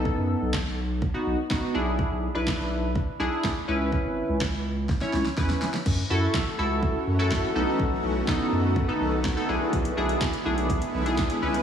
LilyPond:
<<
  \new Staff \with { instrumentName = "Analog polysynth" } { \time 4/4 \key e \mixolydian \tempo 4 = 124 <b dis' a'>4 r4 r16 <b dis' fis'>8 r16 <b dis' fis'>8 <d' e' gis'>8~ | <d' e' gis'>8 r16 <d' e' b'>4~ <d' e' b'>16 r8 <d' e' gis'>8. r16 <cis' e' b'>8~ | <cis' e' b'>4 r4 r16 <cis' e' cis''>8 r16 <cis' e' b'>8. r16 | r8 <e' fis' a'>8. r16 <e' fis' a'>8. r8 <e' fis' a'>8. <b dis' a'>8~ |
<b dis' a'>8. r16 <b dis' a'>8. r8 <b dis' a'>8. r16 <b dis' a'>16 <d' e' gis'>8~ | <d' e' gis'>16 r16 <d' e' gis'>8. r16 <d' e' gis'>8. r8 <d' e' gis'>8. <cis' e' b'>8 | }
  \new Staff \with { instrumentName = "Ambient pad" } { \time 4/4 \key e \mixolydian << { r1 | r1 | r1 | <a fis'>1~ |
<a fis'>2.~ <a fis'>8 <gis e'>8~ | <gis e'>1 | } \\ { r1 | r1 | r1 | <e cis'>2.~ <e cis'>8 <dis b>8~ |
<dis b>2.~ <dis b>8 <d b>8~ | <d b>2.~ <d b>8 r8 | } >> }
  \new Staff \with { instrumentName = "Sub bass" } { \clef bass \time 4/4 \key e \mixolydian r16 fis,8 b,,4.~ b,,16 b,,16 r16 a,,16 r16 b,,8~ | b,,16 b,,8 b,,4.~ b,,16 b,,16 r16 d,16 r16 cis,8~ | cis,16 gis,,8 cis,4.~ cis,16 cis,16 r16 e,8 r8 | fis,8 fis,8 r8 cis,4 fis,4 b,,16 r16 |
b,,8 b,,8 r8 fis,4 b,,4 b,,16 r16 | b,,8 b,,8 r8 b,,4 b,,4 cis,16 r16 | }
  \new DrumStaff \with { instrumentName = "Drums" } \drummode { \time 4/4 bd4 <hc bd sn>4 bd4 <hc bd sn>4 | bd4 <hc bd sn>4 bd4 <hc bd sn>4 | bd4 <hc bd sn>4 <bd sn>16 sn16 sn16 sn16 <bd sn>16 sn16 sn16 sn16 | <cymc bd>4 <hc bd sn>4 bd4 <hc bd sn>4 |
bd4 <hc bd sn>4 bd4 <hc bd sn>4 | <hh bd>16 hh8 hh16 <hc hh bd sn>16 hh8 hh16 <hh bd>16 hh8 hh16 <hc hh bd sn>16 hh8 hh16 | }
>>